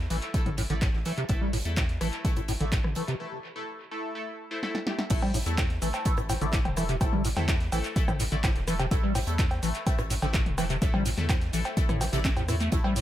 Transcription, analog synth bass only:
0.10 A1
0.46 A1
0.70 A1
0.94 A1
1.29 A1
1.65 E2
2.01 A1
2.37 A1
2.60 A1
2.84 A1
5.10 A1
5.46 E2
5.82 A1
6.18 A1
6.41 A1
6.65 E1
7.01 A1
7.37 E2
7.72 A1
8.08 A1
8.32 A1
8.56 E1
8.91 A1
9.27 E2
9.63 A1
9.99 A1
10.22 A1
10.46 E1
10.82 A1
11.18 E2
11.53 A1
11.89 A1
12.13 A1
12.37 E2
12.72 A1

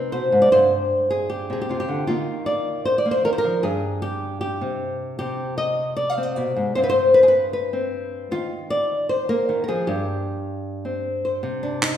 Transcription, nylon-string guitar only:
Already playing: C3 C4 D#4 B4
0.12 B2 C5
0.32 G#2
0.42 D5
0.52 G2 C5
1.10 G#4
1.30 G4
1.50 C3 G#4
1.61 G4
1.69 C3 F4
1.80 G4
1.88 D3
2.07 D#3 A#3 D#4 F4
2.46 D5
2.85 C5
2.98 D5
3.06 A#3
3.11 C5
3.24 D#3 A#4
3.33 C5
3.38 A#4
3.44 F3
3.63 G2 G#4
4.02 G4
4.41 G4
4.61 C3
5.19 C3 G4
5.58 D#5
5.96 D5
6.10 F5
6.18 C4
6.23 D#5
6.36 B2 D5
6.56 G#2
6.75 G2 C4 C5
6.83 B4
6.90 C5
7.14 B4
7.23 G#4
7.28 B4
7.53 B4
7.73 C4
8.31 D#3 F4
8.70 D5
9.09 C5
9.29 A#3 A#4
9.49 D#3
9.64 A#4
9.68 F3 G#4
9.87 G2 G4
10.85 C4
11.25 C5
11.43 C3
11.63 D4
11.82 D#4

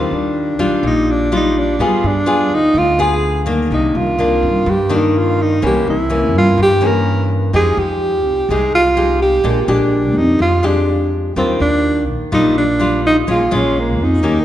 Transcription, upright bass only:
Already playing: D#2
0.11 D#2
0.59 A#1
0.83 A#1
1.79 G2
2.04 G2
2.51 D2
2.74 D2
3.71 C2
3.95 C2
4.42 G2
4.66 G2
5.63 C2
5.87 C2
6.34 G2
6.58 G2
7.53 F2
7.77 F2
8.24 C2
8.49 C2
9.44 A#1
9.68 A#1
10.16 F2
10.40 F2
11.36 D#2
11.60 D#2
12.08 A#1
12.32 A#1
13.28 A#1
13.52 A#1
14.00 F2
14.24 D#2

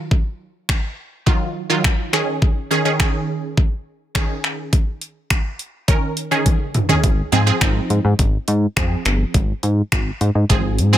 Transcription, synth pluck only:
Already playing: D#3 F#3 F4
1.26 D#3 F#3 F4
1.70 D#3 F#3 F4
2.13 D#3 C#4 G#4
2.71 D#3 C#4 G#4
2.85 D#3 C#4 G#4
2.99 D#3 C#4 G#4
4.15 D#3 C#4 G#4
5.88 D#3 C#4 A#4
6.31 D#3 C#4 G#4
6.89 D#3 C#4 G#4
7.32 F3 C4 G#4
7.46 F3 C4 G#4
7.61 F3 C4 D#4
8.76 F3 C4 G#4
10.49 F3 C4 G#4
10.93 F3 C4 G#4

